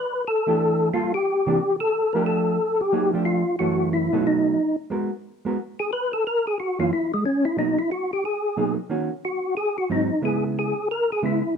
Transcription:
0.00 0.24 B4 medium
0.28 0.89 A4 loud
0.47 0.90 E3 medium
0.47 0.90 A3 medium
0.47 0.90 D4 medium
0.47 0.90 G4 medium
0.93 1.12 G3 medium
0.93 1.12 A#3 medium
0.93 1.12 F4 medium
0.93 1.12 A4 medium
1.14 1.76 G4 loud
1.46 1.57 C3 medium
1.46 1.58 E3 medium
1.46 1.58 A#3 medium
1.46 1.58 D4 medium
1.80 2.14 A4 loud
2.13 2.57 F3 medium
2.13 2.57 A3 medium
2.13 2.57 D4 medium
2.13 2.57 G4 medium
2.13 2.24 A#4 medium
2.26 2.81 A4 medium
2.81 3.11 G4 loud
2.93 3.11 F#3 medium
2.93 3.11 A#3 medium
2.93 3.11 D#4 medium
2.93 3.12 G#4 medium
3.13 3.42 F3 medium
3.13 3.42 A3 medium
3.13 3.43 D4 medium
3.13 3.43 G4 medium
3.25 3.56 F4 medium
3.59 4.09 F#2 medium
3.59 4.09 E3 medium
3.59 4.09 A3 medium
3.59 4.09 C#4 medium
3.59 3.89 F#4 medium
3.93 4.26 E4 medium
4.13 4.56 B2 medium
4.13 4.56 F#3 medium
4.13 4.56 A3 medium
4.13 4.56 D#4 medium
4.27 4.76 D#4 medium
4.90 5.09 G#3 medium
4.90 5.10 B3 soft
4.90 5.10 F#4 medium
4.90 5.10 A#4 medium
5.45 5.56 G#3 medium
5.45 5.57 B3 medium
5.45 5.57 F#4 medium
5.45 5.57 A#4 medium
5.80 5.91 G#4 medium
5.93 6.12 B4 medium
6.13 6.24 A4 medium
6.27 6.46 A#4 medium
6.47 6.58 G#4 medium
6.60 6.79 F#4 medium
6.79 6.90 F#2 medium
6.79 6.90 E3 medium
6.79 6.90 A#3 medium
6.79 6.90 C#4 medium
6.79 6.91 F4 medium
6.93 7.12 E4 medium
7.14 7.24 G#3 soft
7.26 7.45 C#4 medium
7.45 7.57 E4 loud
7.57 7.76 B2 medium
7.57 7.76 F#3 soft
7.57 7.76 A#3 medium
7.57 7.76 D#4 medium
7.57 7.78 D#4 medium
7.79 7.90 E4 medium
7.92 8.11 F#4 medium
8.13 8.24 G4 medium
8.25 8.75 G#4 medium
8.57 8.76 B2 medium
8.57 8.76 F#3 medium
8.57 8.76 A#3 medium
8.57 8.76 D#4 medium
8.90 9.08 D#3 medium
8.90 9.09 A#3 medium
8.90 9.09 C#4 medium
8.90 9.09 F#4 medium
9.25 9.55 F#4 medium
9.57 9.77 G#4 loud
9.78 9.89 F#4 medium
9.90 10.08 G#2 medium
9.90 10.08 F#3 medium
9.90 10.09 C4 medium
9.90 10.09 D#4 medium
9.90 10.22 D#4 medium
10.22 10.72 C#3 medium
10.22 10.72 G#3 medium
10.22 10.73 B3 medium
10.22 10.73 E4 medium
10.22 10.44 G#4 medium
10.59 10.88 G#4 medium
10.91 11.11 A#4 medium
11.12 11.23 G#4 medium
11.22 11.41 C#3 medium
11.22 11.41 G#3 medium
11.22 11.42 B3 medium
11.22 11.42 E4 medium
11.22 11.55 E4 medium

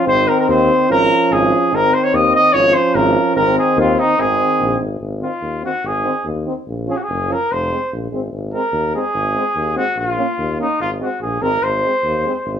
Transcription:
0.06 0.29 G#1 medium
0.06 0.90 D#3 medium
0.06 0.91 C4 medium
0.06 0.29 C5 loud
0.28 0.39 A#4 medium
0.40 0.48 A#4 medium
0.48 0.71 D#2 loud
0.48 0.87 C5 medium
0.89 1.12 G#1 medium
0.89 1.73 F3 medium
0.89 1.73 C#4 medium
0.89 1.34 A#4 loud
1.30 1.53 G#1 loud
1.30 1.76 G#4 medium
1.71 1.94 G#1 medium
1.71 2.56 D#3 medium
1.71 2.55 C4 medium
1.71 1.95 A#4 loud
1.93 2.05 C5 medium
2.04 2.16 C#5 medium
2.13 2.35 D#2 loud
2.13 2.34 D#5 medium
2.35 2.55 D#5 loud
2.53 2.76 G#1 medium
2.53 3.37 F3 medium
2.53 3.38 C#4 medium
2.53 2.75 C#5 loud
2.74 2.96 C5 loud
2.94 3.17 G#1 loud
2.94 3.35 A#4 medium
3.35 3.58 G#1 medium
3.35 4.17 D#3 medium
3.35 4.18 C4 medium
3.35 3.55 A#4 loud
3.58 3.77 G#4 medium
3.77 3.99 D#2 loud
3.77 4.01 F4 medium
3.99 4.22 D#4 loud
4.18 4.41 G#1 medium
4.18 4.83 D#3 medium
4.18 4.83 C4 medium
4.18 4.81 G#4 loud
4.60 4.78 A#1 medium
4.80 4.99 G#1 medium
5.00 5.23 G#1 medium
5.21 5.30 D#3 soft
5.21 5.29 C4 medium
5.21 5.61 F4 medium
5.42 5.64 D#2 medium
5.63 5.72 D#3 medium
5.63 5.71 C4 medium
5.63 5.88 F#4 medium
5.83 6.06 G#1 medium
5.87 6.27 G#4 medium
6.04 6.12 D#3 medium
6.04 6.13 C4 medium
6.24 6.47 D#2 medium
6.46 6.54 D#3 medium
6.46 6.54 C4 medium
6.67 6.89 A#1 medium
6.86 6.95 F3 medium
6.86 6.96 C#4 medium
6.86 6.98 G#4 medium
6.97 7.04 F#4 medium
7.03 7.34 G#4 medium
7.08 7.31 F#1 medium
7.28 7.36 F3 medium
7.28 7.37 C#4 medium
7.32 7.53 A#4 medium
7.50 7.73 F1 medium
7.50 7.92 C5 medium
7.71 7.79 G#3 medium
7.71 7.80 C4 medium
7.92 8.10 A#1 medium
8.11 8.30 G#1 medium
8.11 8.20 G#3 soft
8.11 8.22 C4 medium
8.32 8.55 G#1 medium
8.53 8.61 G#3 medium
8.53 8.62 C4 medium
8.53 8.92 A#4 medium
8.72 8.95 D#2 medium
8.94 9.03 G#3 medium
8.94 9.03 C4 medium
8.94 9.73 G#4 medium
9.14 9.37 G#1 medium
9.35 9.44 G#3 medium
9.35 9.44 C4 medium
9.55 9.78 D#2 medium
9.75 9.85 G#3 medium
9.75 9.84 C4 medium
9.75 10.00 F#4 medium
9.95 10.19 A#1 medium
9.95 10.60 F4 medium
10.17 10.26 A#3 medium
10.17 10.26 C#4 medium
10.38 10.61 D#2 medium
10.59 10.67 A#3 medium
10.59 10.68 C#4 medium
10.59 10.80 D#4 medium
10.80 11.03 G#1 medium
10.80 10.90 F4 medium
11.00 11.09 G#3 medium
11.00 11.09 C4 medium
11.00 11.21 F#4 medium
11.21 11.40 A#1 medium
11.21 11.43 G#4 medium
11.41 11.61 G#1 medium
11.41 11.50 G#3 medium
11.41 11.50 C4 medium
11.41 11.65 A#4 medium
11.62 11.85 G#1 medium
11.62 12.60 C5 medium
11.83 11.92 G#3 medium
11.83 11.94 C4 medium
12.03 12.26 D#2 medium
12.25 12.33 G#3 medium
12.25 12.34 C4 medium
12.45 12.60 G#1 medium

